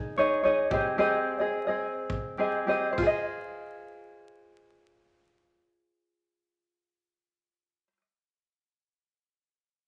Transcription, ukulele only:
0, 0, Header, 1, 2, 480
1, 0, Start_track
1, 0, Key_signature, -4, "minor"
1, 0, Tempo, 542495
1, 866, Time_signature, 4, 2, 24, 8
1, 1355, Tempo, 574163
1, 2315, Tempo, 610376
1, 7969, End_track
2, 0, Start_track
2, 0, Title_t, "Ukulele"
2, 0, Program_c, 0, 24
2, 0, Note_on_c, 0, 63, 42
2, 0, Note_on_c, 0, 68, 46
2, 0, Note_on_c, 0, 75, 53
2, 155, Note_on_c, 0, 73, 54
2, 159, Note_off_c, 0, 63, 0
2, 162, Note_off_c, 0, 68, 0
2, 163, Note_on_c, 0, 63, 59
2, 165, Note_on_c, 0, 68, 59
2, 170, Note_off_c, 0, 75, 0
2, 174, Note_on_c, 0, 75, 61
2, 373, Note_off_c, 0, 73, 0
2, 383, Note_off_c, 0, 63, 0
2, 384, Note_on_c, 0, 73, 51
2, 387, Note_off_c, 0, 68, 0
2, 393, Note_off_c, 0, 75, 0
2, 393, Note_on_c, 0, 63, 57
2, 398, Note_on_c, 0, 68, 56
2, 404, Note_on_c, 0, 75, 67
2, 620, Note_off_c, 0, 73, 0
2, 624, Note_on_c, 0, 67, 55
2, 628, Note_off_c, 0, 68, 0
2, 629, Note_off_c, 0, 63, 0
2, 632, Note_off_c, 0, 75, 0
2, 632, Note_on_c, 0, 60, 61
2, 639, Note_on_c, 0, 68, 60
2, 643, Note_on_c, 0, 75, 59
2, 855, Note_off_c, 0, 67, 0
2, 859, Note_off_c, 0, 60, 0
2, 864, Note_off_c, 0, 68, 0
2, 865, Note_on_c, 0, 67, 68
2, 870, Note_on_c, 0, 60, 75
2, 871, Note_off_c, 0, 75, 0
2, 874, Note_on_c, 0, 68, 71
2, 882, Note_on_c, 0, 75, 78
2, 1223, Note_off_c, 0, 75, 0
2, 1231, Note_off_c, 0, 67, 0
2, 1234, Note_off_c, 0, 60, 0
2, 1234, Note_on_c, 0, 75, 51
2, 1236, Note_off_c, 0, 68, 0
2, 1246, Note_on_c, 0, 68, 47
2, 1253, Note_on_c, 0, 60, 41
2, 1459, Note_off_c, 0, 75, 0
2, 1469, Note_off_c, 0, 68, 0
2, 1469, Note_on_c, 0, 75, 48
2, 1477, Note_off_c, 0, 60, 0
2, 1479, Note_on_c, 0, 68, 42
2, 1487, Note_on_c, 0, 60, 40
2, 2066, Note_on_c, 0, 67, 51
2, 2068, Note_off_c, 0, 60, 0
2, 2071, Note_on_c, 0, 60, 52
2, 2075, Note_off_c, 0, 68, 0
2, 2078, Note_on_c, 0, 68, 57
2, 2080, Note_off_c, 0, 75, 0
2, 2084, Note_on_c, 0, 75, 58
2, 2296, Note_off_c, 0, 67, 0
2, 2304, Note_off_c, 0, 60, 0
2, 2306, Note_on_c, 0, 67, 54
2, 2308, Note_off_c, 0, 68, 0
2, 2314, Note_on_c, 0, 60, 53
2, 2315, Note_off_c, 0, 75, 0
2, 2318, Note_on_c, 0, 68, 51
2, 2324, Note_on_c, 0, 75, 59
2, 2506, Note_off_c, 0, 75, 0
2, 2509, Note_on_c, 0, 72, 58
2, 2545, Note_off_c, 0, 67, 0
2, 2547, Note_off_c, 0, 60, 0
2, 2551, Note_off_c, 0, 68, 0
2, 2551, Note_on_c, 0, 65, 56
2, 2586, Note_on_c, 0, 68, 61
2, 2617, Note_on_c, 0, 75, 67
2, 6397, Note_off_c, 0, 72, 0
2, 6438, Note_off_c, 0, 65, 0
2, 6474, Note_off_c, 0, 68, 0
2, 6505, Note_off_c, 0, 75, 0
2, 7969, End_track
0, 0, End_of_file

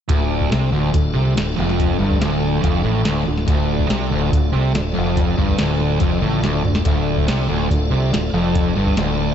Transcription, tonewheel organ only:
0, 0, Header, 1, 2, 480
1, 0, Start_track
1, 0, Key_signature, -1, "minor"
1, 0, Tempo, 422833
1, 99, Time_signature, 4, 2, 24, 8
1, 10608, End_track
2, 0, Start_track
2, 0, Title_t, "Tonewheel organ"
2, 0, Program_c, 0, 16
2, 117, Note_on_c, 0, 65, 64
2, 117, Note_on_c, 0, 69, 64
2, 129, Note_on_c, 0, 62, 65
2, 3917, Note_off_c, 0, 65, 0
2, 3917, Note_off_c, 0, 69, 0
2, 3922, Note_off_c, 0, 62, 0
2, 3953, Note_on_c, 0, 74, 69
2, 3955, Note_on_c, 0, 65, 62
2, 3960, Note_on_c, 0, 69, 65
2, 7746, Note_off_c, 0, 74, 0
2, 7747, Note_off_c, 0, 65, 0
2, 7749, Note_off_c, 0, 69, 0
2, 7797, Note_on_c, 0, 65, 62
2, 7812, Note_on_c, 0, 69, 61
2, 7815, Note_on_c, 0, 74, 68
2, 10608, Note_off_c, 0, 65, 0
2, 10608, Note_off_c, 0, 69, 0
2, 10608, Note_off_c, 0, 74, 0
2, 10608, End_track
0, 0, End_of_file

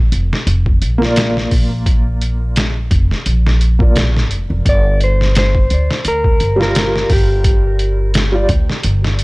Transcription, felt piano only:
0, 0, Header, 1, 2, 480
1, 0, Start_track
1, 0, Key_signature, -2, "minor"
1, 0, Tempo, 697674
1, 1280, Time_signature, 4, 2, 24, 8
1, 6355, End_track
2, 0, Start_track
2, 0, Title_t, "Felt piano"
2, 0, Program_c, 0, 0
2, 675, Note_on_c, 0, 58, 88
2, 700, Note_on_c, 0, 65, 79
2, 724, Note_on_c, 0, 74, 93
2, 1852, Note_off_c, 0, 58, 0
2, 1865, Note_off_c, 0, 65, 0
2, 1877, Note_off_c, 0, 74, 0
2, 2606, Note_on_c, 0, 58, 63
2, 2618, Note_on_c, 0, 65, 60
2, 2631, Note_on_c, 0, 74, 74
2, 2758, Note_off_c, 0, 58, 0
2, 2765, Note_off_c, 0, 65, 0
2, 2771, Note_off_c, 0, 74, 0
2, 4513, Note_on_c, 0, 55, 86
2, 4538, Note_on_c, 0, 65, 78
2, 4563, Note_on_c, 0, 70, 97
2, 5691, Note_off_c, 0, 55, 0
2, 5704, Note_off_c, 0, 65, 0
2, 5716, Note_off_c, 0, 70, 0
2, 5725, Note_on_c, 0, 55, 80
2, 5736, Note_on_c, 0, 65, 70
2, 5749, Note_on_c, 0, 74, 88
2, 5817, Note_off_c, 0, 55, 0
2, 5823, Note_off_c, 0, 65, 0
2, 5829, Note_off_c, 0, 74, 0
2, 6355, End_track
0, 0, End_of_file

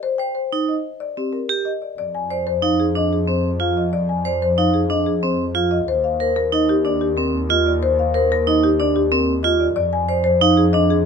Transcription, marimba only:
0, 0, Header, 1, 2, 480
1, 0, Start_track
1, 0, Tempo, 324324
1, 55, Time_signature, 6, 2, 24, 8
1, 16361, End_track
2, 0, Start_track
2, 0, Title_t, "Marimba"
2, 0, Program_c, 0, 12
2, 42, Note_on_c, 0, 72, 73
2, 271, Note_on_c, 0, 79, 58
2, 362, Note_off_c, 0, 72, 0
2, 516, Note_on_c, 0, 72, 58
2, 599, Note_off_c, 0, 79, 0
2, 840, Note_off_c, 0, 72, 0
2, 1013, Note_on_c, 0, 75, 49
2, 1326, Note_off_c, 0, 75, 0
2, 1484, Note_on_c, 0, 74, 65
2, 1736, Note_on_c, 0, 67, 52
2, 1803, Note_off_c, 0, 74, 0
2, 1964, Note_on_c, 0, 70, 52
2, 2047, Note_off_c, 0, 67, 0
2, 2283, Note_off_c, 0, 70, 0
2, 2446, Note_on_c, 0, 75, 55
2, 2691, Note_on_c, 0, 74, 48
2, 2764, Note_off_c, 0, 75, 0
2, 2916, Note_off_c, 0, 74, 0
2, 2934, Note_on_c, 0, 74, 69
2, 3176, Note_on_c, 0, 80, 58
2, 3247, Note_off_c, 0, 74, 0
2, 3418, Note_on_c, 0, 74, 56
2, 3487, Note_off_c, 0, 80, 0
2, 3651, Note_on_c, 0, 72, 78
2, 3728, Note_off_c, 0, 74, 0
2, 3889, Note_on_c, 0, 77, 55
2, 3966, Note_off_c, 0, 72, 0
2, 4138, Note_on_c, 0, 68, 58
2, 4205, Note_off_c, 0, 77, 0
2, 4388, Note_on_c, 0, 75, 77
2, 4448, Note_off_c, 0, 68, 0
2, 4629, Note_on_c, 0, 68, 54
2, 4692, Note_off_c, 0, 75, 0
2, 4859, Note_on_c, 0, 72, 58
2, 4932, Note_off_c, 0, 68, 0
2, 5168, Note_off_c, 0, 72, 0
2, 5332, Note_on_c, 0, 77, 58
2, 5581, Note_on_c, 0, 75, 51
2, 5646, Note_off_c, 0, 77, 0
2, 5815, Note_on_c, 0, 74, 71
2, 5889, Note_off_c, 0, 75, 0
2, 6054, Note_on_c, 0, 80, 54
2, 6127, Note_off_c, 0, 74, 0
2, 6307, Note_on_c, 0, 74, 53
2, 6366, Note_off_c, 0, 80, 0
2, 6545, Note_on_c, 0, 72, 77
2, 6611, Note_off_c, 0, 74, 0
2, 6779, Note_on_c, 0, 77, 67
2, 6851, Note_off_c, 0, 72, 0
2, 7011, Note_on_c, 0, 68, 61
2, 7088, Note_off_c, 0, 77, 0
2, 7254, Note_on_c, 0, 75, 74
2, 7326, Note_off_c, 0, 68, 0
2, 7494, Note_on_c, 0, 68, 57
2, 7566, Note_off_c, 0, 75, 0
2, 7735, Note_on_c, 0, 72, 55
2, 7806, Note_off_c, 0, 68, 0
2, 8047, Note_off_c, 0, 72, 0
2, 8213, Note_on_c, 0, 77, 53
2, 8452, Note_on_c, 0, 75, 61
2, 8526, Note_off_c, 0, 77, 0
2, 8706, Note_on_c, 0, 72, 85
2, 8766, Note_off_c, 0, 75, 0
2, 8940, Note_on_c, 0, 77, 57
2, 9011, Note_off_c, 0, 72, 0
2, 9185, Note_on_c, 0, 72, 62
2, 9249, Note_off_c, 0, 77, 0
2, 9416, Note_on_c, 0, 70, 87
2, 9490, Note_off_c, 0, 72, 0
2, 9673, Note_on_c, 0, 75, 63
2, 9727, Note_off_c, 0, 70, 0
2, 9906, Note_on_c, 0, 67, 67
2, 9973, Note_off_c, 0, 75, 0
2, 10145, Note_on_c, 0, 74, 78
2, 10211, Note_off_c, 0, 67, 0
2, 10374, Note_on_c, 0, 67, 55
2, 10450, Note_off_c, 0, 74, 0
2, 10609, Note_on_c, 0, 70, 59
2, 10686, Note_off_c, 0, 67, 0
2, 10925, Note_off_c, 0, 70, 0
2, 11091, Note_on_c, 0, 75, 65
2, 11340, Note_on_c, 0, 74, 59
2, 11406, Note_off_c, 0, 75, 0
2, 11583, Note_on_c, 0, 72, 91
2, 11649, Note_off_c, 0, 74, 0
2, 11828, Note_on_c, 0, 77, 63
2, 11890, Note_off_c, 0, 72, 0
2, 12061, Note_on_c, 0, 72, 73
2, 12131, Note_off_c, 0, 77, 0
2, 12312, Note_on_c, 0, 70, 90
2, 12369, Note_off_c, 0, 72, 0
2, 12553, Note_on_c, 0, 75, 66
2, 12613, Note_off_c, 0, 70, 0
2, 12779, Note_on_c, 0, 67, 74
2, 12853, Note_off_c, 0, 75, 0
2, 13024, Note_on_c, 0, 74, 91
2, 13088, Note_off_c, 0, 67, 0
2, 13257, Note_on_c, 0, 67, 70
2, 13330, Note_off_c, 0, 74, 0
2, 13492, Note_on_c, 0, 70, 70
2, 13568, Note_off_c, 0, 67, 0
2, 13806, Note_off_c, 0, 70, 0
2, 13956, Note_on_c, 0, 75, 67
2, 14206, Note_on_c, 0, 74, 61
2, 14280, Note_off_c, 0, 75, 0
2, 14426, Note_off_c, 0, 74, 0
2, 14444, Note_on_c, 0, 74, 102
2, 14693, Note_on_c, 0, 80, 69
2, 14763, Note_off_c, 0, 74, 0
2, 14934, Note_on_c, 0, 74, 64
2, 15006, Note_off_c, 0, 80, 0
2, 15155, Note_on_c, 0, 72, 92
2, 15247, Note_off_c, 0, 74, 0
2, 15415, Note_on_c, 0, 77, 69
2, 15480, Note_off_c, 0, 72, 0
2, 15647, Note_on_c, 0, 68, 74
2, 15727, Note_off_c, 0, 77, 0
2, 15881, Note_on_c, 0, 75, 91
2, 15964, Note_off_c, 0, 68, 0
2, 16139, Note_on_c, 0, 68, 69
2, 16202, Note_off_c, 0, 75, 0
2, 16361, Note_off_c, 0, 68, 0
2, 16361, End_track
0, 0, End_of_file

